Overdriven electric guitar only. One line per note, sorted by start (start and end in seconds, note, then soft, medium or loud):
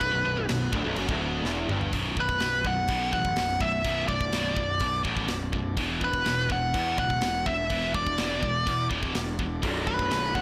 0.03 0.14 B1 medium
0.15 0.25 B1 medium
0.27 0.38 B1 medium
0.39 0.49 B1 medium
0.50 0.69 B1 medium
0.74 0.85 D2 loud
0.86 0.97 B1 loud
0.99 1.10 F#2 loud
1.11 1.45 D2 loud
1.45 1.69 E2 loud
1.70 1.93 G2 loud
9.63 10.42 B1 medium
9.63 10.42 F#2 medium
9.63 10.42 B2 loud
9.63 10.42 F#3 medium
9.67 10.42 D4 medium